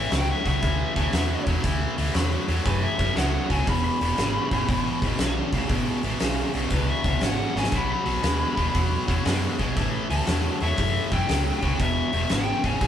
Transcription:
Already playing: lead electric guitar E5
0.11 fingered electric bass C#2, distorted electric guitar A2 F#3, lead electric guitar G5, snare, open hi-hat
0.31 lead electric guitar E5
0.44 fingered electric bass C#2, distorted electric guitar A2 F#3, lead electric guitar E5, kick, open hi-hat
0.62 fingered electric bass D2, distorted electric guitar A2 E3, kick, open hi-hat
0.96 fingered electric bass D2, distorted electric guitar A2 E3, kick, open hi-hat
1.13 fingered electric bass E2, distorted electric guitar A2 F#3, snare, open hi-hat
1.47 fingered electric bass E2, distorted electric guitar A2 F#3, kick, open hi-hat
1.63 fingered electric bass D2, distorted electric guitar A2 E3, kick, open hi-hat
1.97 fingered electric bass D2, distorted electric guitar A2 E3, open hi-hat
2.14 fingered electric bass E2, distorted electric guitar A2 F#3, snare, open hi-hat
2.48 fingered electric bass E2, distorted electric guitar A2 F#3, open hi-hat
2.65 fingered electric bass F#2, distorted electric guitar A2 E3, lead electric guitar B4, kick, open hi-hat
2.83 lead electric guitar E5
2.98 fingered electric bass F#2, distorted electric guitar A2 E3, kick, open hi-hat
3.15 fingered electric bass C#2, distorted electric guitar A2 F#3, lead electric guitar F#5, snare, open hi-hat
3.49 fingered electric bass C#2, distorted electric guitar A2 F#3, lead electric guitar G#5, kick, open hi-hat
3.67 fingered electric bass E1, distorted electric guitar E2 B2, lead electric guitar B5, kick, open hi-hat
3.85 lead electric guitar B5
4.00 fingered electric bass E1, distorted electric guitar E2 B2, open hi-hat
4.17 fingered electric bass G#1, distorted electric guitar E2 C#3, snare, open hi-hat
4.51 fingered electric bass G#1, distorted electric guitar E2 C#3, kick, open hi-hat
4.68 fingered electric bass A1, distorted electric guitar E2 B2, kick, open hi-hat
5.02 fingered electric bass A1, distorted electric guitar E2 B2, kick, open hi-hat
5.19 fingered electric bass B1, distorted electric guitar E2 C#3, snare, open hi-hat
5.52 fingered electric bass B1, distorted electric guitar E2 C#3, kick, open hi-hat
5.69 fingered electric bass A1, distorted electric guitar E2 B2, kick, open hi-hat
6.03 fingered electric bass A1, distorted electric guitar E2 B2, open hi-hat
6.20 fingered electric bass B1, distorted electric guitar E2 C#3, snare, open hi-hat
6.54 fingered electric bass B1, distorted electric guitar E2 C#3, open hi-hat
6.70 fingered electric bass C#2, distorted electric guitar E2 B2, lead electric guitar B4, kick, open hi-hat
6.89 lead electric guitar E5
7.04 fingered electric bass C#2, distorted electric guitar E2 B2, kick, open hi-hat
7.21 fingered electric bass G#1, distorted electric guitar E2 C#3, lead electric guitar F#5, snare, open hi-hat
7.55 fingered electric bass G#1, distorted electric guitar E2 C#3, lead electric guitar G#5, snare
7.64 snare
7.71 fingered electric bass B1, distorted electric guitar B2 F#3, lead electric guitar B5, kick, open hi-hat
7.92 lead electric guitar B5
8.05 fingered electric bass B1, distorted electric guitar B2 F#3, open hi-hat
8.23 fingered electric bass D#2, distorted electric guitar B2 G#3, snare, open hi-hat
8.55 fingered electric bass D#2, distorted electric guitar B2 G#3, kick, open hi-hat
8.73 fingered electric bass E2, distorted electric guitar B2 F#3, kick, open hi-hat
9.07 fingered electric bass E2, distorted electric guitar B2 F#3, kick, open hi-hat
9.25 fingered electric bass F#2, distorted electric guitar B2 G#3, snare, open hi-hat
9.59 fingered electric bass B1, distorted electric guitar B2 G#3, kick, open hi-hat
9.76 fingered electric bass A1, distorted electric guitar A2 E3, kick, open hi-hat
10.10 fingered electric bass D2, distorted electric guitar A2 E3, lead electric guitar A5, open hi-hat
10.26 fingered electric bass E2, distorted electric guitar A2 F#3, snare, open hi-hat
10.60 fingered electric bass E2, distorted electric guitar A2 F#3, lead electric guitar E5, open hi-hat
10.78 fingered electric bass F#2, distorted electric guitar A2 E3, kick, open hi-hat
11.12 fingered electric bass F#2, distorted electric guitar A2 E3, lead electric guitar G5, kick, open hi-hat
11.28 fingered electric bass C#2, distorted electric guitar A2 F#3, snare, open hi-hat
11.61 fingered electric bass C#2, distorted electric guitar A2 F#3, kick, open hi-hat
11.78 fingered electric bass E1, distorted electric guitar E2 B2, lead electric guitar E5, kick, open hi-hat
12.12 fingered electric bass E1, distorted electric guitar E2 B2, open hi-hat
12.30 fingered electric bass G#1, distorted electric guitar E2 C#3, lead electric guitar G5, snare, open hi-hat
12.63 fingered electric bass G#1, distorted electric guitar E2 C#3, lead electric guitar G#5, kick, open hi-hat
12.80 fingered electric bass A1, distorted electric guitar E2 B2, kick, open hi-hat

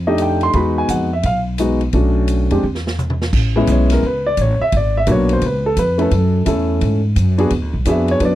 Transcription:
Already playing: upright bass F2
0.07 grand piano A3 D4 D#4 G4 D#5
0.18 grand piano G5, hi-hat pedal, ride
0.41 grand piano C6, ride
0.53 upright bass E2, grand piano G#3 B3 D#4 F#4 B5, kick, ride
0.78 grand piano G#5
0.89 upright bass F2, grand piano F#5, hi-hat pedal, ride
1.13 grand piano E5
1.23 upright bass B1, grand piano F5, kick, ride
1.58 grand piano G#3 B3 D#4 F#4, hi-hat pedal, ride
1.81 ride
1.93 upright bass B1, grand piano A3 C#4 D4 F#4, kick, ride
2.28 hi-hat pedal, ride
2.51 upright bass F2, grand piano G#3 C4 D4 G4, ride
2.63 upright bass E2
2.75 snare
2.87 snare
2.98 hi-hat pedal, mid tom
3.10 mid tom
3.22 snare
3.33 upright bass A1, kick, crash
3.56 grand piano G#3 B3 C#4 E4
3.67 upright bass B1, kick, hi-hat pedal, ride
3.72 grand piano C#5
3.90 grand piano A#4, snare, ride
4.03 upright bass C#2, grand piano B4, kick
4.26 grand piano D5
4.37 upright bass A1, kick, hi-hat pedal, ride
4.41 grand piano C#5
4.60 grand piano E5, muted upright bass stroke
4.72 upright bass G#1, kick, ride
4.77 grand piano D5
4.97 grand piano E5
5.07 upright bass B1, grand piano A#3 B3 D4 F#4, kick, hi-hat pedal, ride
5.12 grand piano C#5
5.29 grand piano C5, ride
5.42 upright bass C#2, kick, ride
5.46 grand piano B4
5.66 grand piano A4
5.77 upright bass F2, grand piano B4, kick, hi-hat pedal, ride
5.98 grand piano A3 C#4 E4 A4 B4, ride
6.11 upright bass F#2, kick, ride
6.46 upright bass E2, grand piano A3 C#4 E4 A4, kick, hi-hat pedal, ride
6.81 upright bass G#2, kick, ride
7.16 upright bass F#2, kick, hi-hat pedal, ride
7.38 grand piano B3 D4 F#4 G#4, ride
7.50 upright bass E2, kick, ride
7.61 upright bass D2
7.73 upright bass B1
7.85 upright bass F2, grand piano B3 D4 F#4 G#4 E5, kick, hi-hat pedal, ride
8.08 grand piano C#5, ride
8.20 upright bass F#2, grand piano B3 D4 F#4 B4, kick, ride
8.25 grand piano D5

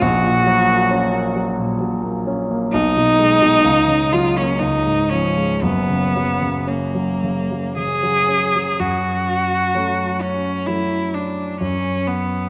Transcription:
0.01 grand piano A#1, cello F#4
0.23 grand piano A#2
0.47 grand piano F#3
0.68 grand piano A#3
0.91 grand piano C#4
1.13 grand piano A#3
1.36 grand piano F#3
1.59 grand piano A#2
1.81 grand piano F#3
2.03 grand piano A#3
2.27 grand piano C#4
2.50 grand piano A#3
2.72 grand piano B1, cello D#4
2.96 grand piano B2
3.19 grand piano G#3
3.42 grand piano B2
3.65 grand piano C#2
3.88 grand piano C#3
4.13 grand piano F#3, cello F4
4.37 grand piano A#3, cello C#4
4.59 grand piano C#2, cello D#4
4.86 grand piano G#2
5.10 grand piano F3, cello C#4
5.38 grand piano G#3
5.62 grand piano F#1 F#2, cello B3
5.90 grand piano C#3
6.16 grand piano F#3
6.42 grand piano C#3
6.67 cello A#3, grand piano C#4
6.95 grand piano F#3
7.24 grand piano C#3
7.51 grand piano F#3
7.77 grand piano C#3, cello G#4
8.03 grand piano F#3
8.29 grand piano C#4
8.56 grand piano F#3
8.80 grand piano F#2, cello F#4
9.75 grand piano F#3 A3 C#4
10.22 cello C#4
10.67 grand piano F#3 A3 C#4, cello E4
11.14 cello D4
11.61 grand piano F#2, cello C#4
12.07 cello B3

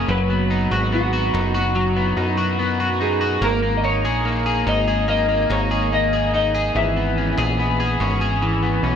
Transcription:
Already playing: clean electric guitar A#3 C#4 G#4
0.09 analog synth bass F#1, clean electric guitar F#3 B4
0.30 clean electric guitar B3
0.50 clean electric guitar D#4
0.71 analog synth bass G#1, clean electric guitar F#4
0.92 clean electric guitar B3 F#4
1.13 clean electric guitar F#4
1.34 analog synth bass F#1, clean electric guitar D#4
1.54 clean electric guitar F#4
1.75 clean electric guitar F#3
1.96 clean electric guitar B3
2.01 clean electric guitar E4
2.17 analog synth bass F#2, clean electric guitar D#4
2.37 clean electric guitar F#4
2.59 clean electric guitar B3
2.80 clean electric guitar F#4
3.00 clean electric guitar D#4 G#4
3.21 clean electric guitar F#4
3.42 analog synth bass G#1, clean electric guitar A#3 A#4
3.62 clean electric guitar A#3
3.77 clean electric guitar D#5
3.84 clean electric guitar D#4 C#5
4.05 analog synth bass A#1, clean electric guitar G#4
4.25 clean electric guitar A#3
4.46 clean electric guitar G#4
4.67 analog synth bass G#1, clean electric guitar D#4 D#5
4.88 clean electric guitar G#4
5.08 clean electric guitar A#3 D#5
5.28 clean electric guitar A#3
5.50 analog synth bass G#1, clean electric guitar D#4 C#5
5.71 clean electric guitar G#4
5.92 clean electric guitar A#3 D#5
6.13 clean electric guitar G#4
6.34 clean electric guitar D#4 D#5
6.55 clean electric guitar G#4
6.75 analog synth bass G#1, clean electric guitar E3 E5
6.97 clean electric guitar B3
7.17 clean electric guitar C#4
7.38 analog synth bass A#1, clean electric guitar G#4
7.59 clean electric guitar B3
7.80 clean electric guitar G#4
8.00 analog synth bass G#1, clean electric guitar C#4
8.21 clean electric guitar G#4
8.42 clean electric guitar E3
8.63 clean electric guitar B3
8.83 analog synth bass B1, clean electric guitar C#4

